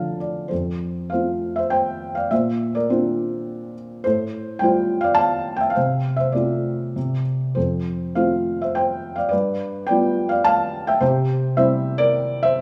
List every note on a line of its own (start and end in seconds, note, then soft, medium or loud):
0.00 0.48 D2 medium
0.00 0.17 A2 soft
0.00 0.53 D3 soft
0.00 0.50 F3 soft
0.00 0.53 A3 soft
0.00 0.53 F4 medium
0.00 0.19 F5 soft
0.00 0.53 A5 medium
0.20 0.49 D5 soft
0.48 2.27 F2 soft
0.48 1.08 A4 soft
0.48 1.11 C5 soft
1.10 2.28 A3 soft
1.10 2.28 C4 soft
1.10 1.55 C5 soft
1.10 1.58 F5 medium
1.14 2.28 F4 soft
1.56 1.71 C5 medium
1.56 1.72 E5 medium
1.70 2.13 C5 medium
1.70 2.17 G5 medium
2.15 2.30 D5 soft
2.15 2.29 F5 medium
2.31 4.01 A#2 soft
2.31 2.73 C5 soft
2.31 2.76 E5 medium
2.75 2.89 A#4 medium
2.75 2.90 D5 medium
2.90 4.02 A#3 soft
2.90 4.02 C4 soft
2.90 4.02 D4 soft
2.90 3.74 F4 soft
2.90 3.73 C5 medium
4.04 5.73 A2 medium
4.04 4.58 A4 medium
4.04 4.62 C5 medium
4.59 5.73 G3 soft
4.59 5.73 A3 soft
4.59 5.74 F4 medium
4.59 5.00 G5 medium
4.63 5.02 C5 medium
5.01 5.17 D5 medium
5.01 5.16 F5 medium
5.15 5.57 A5 loud
5.19 5.59 F5 medium
5.56 5.74 G5 medium
5.61 5.75 E5 medium
5.70 6.19 F5 medium
5.75 6.93 C3 medium
5.75 6.17 C5 medium
6.17 6.34 C5 medium
6.17 6.32 E5 medium
6.32 6.94 A3 soft
6.32 6.94 C4 soft
6.32 6.94 F4 soft
6.32 7.23 A4 soft
6.32 7.21 D5 medium
6.96 7.55 C3 soft
7.55 9.29 F2 soft
7.55 8.13 A4 soft
7.55 8.12 C5 medium
8.15 9.29 A3 soft
8.15 9.29 C4 soft
8.15 9.29 F4 soft
8.15 8.58 C5 soft
8.15 8.62 F5 medium
8.62 8.76 C5 soft
8.62 8.75 E5 medium
8.75 9.16 C5 medium
8.75 9.15 G5 medium
9.16 9.27 D5 medium
9.16 9.30 F5 medium
9.29 9.84 B4 medium
9.29 9.83 D5 medium
9.33 10.98 G2 soft
9.87 10.99 G3 soft
9.87 10.28 D5 medium
9.87 10.31 G5 medium
9.91 10.99 B3 soft
9.91 10.99 F4 medium
10.29 10.44 D5 medium
10.29 10.44 F5 medium
10.45 10.85 F5 medium
10.45 10.89 A5 loud
10.87 11.01 E5 medium
10.87 11.01 G5 medium
11.00 12.61 C3 medium
11.00 11.54 G4 medium
11.00 11.56 C5 medium
11.57 12.61 G3 medium
11.57 12.61 C4 medium
11.57 12.61 E4 medium
11.57 11.97 C5 medium
11.57 12.01 E5 medium
11.98 12.40 A#4 medium
11.98 12.43 D5 loud
12.43 12.61 C5 medium
12.43 12.61 E5 medium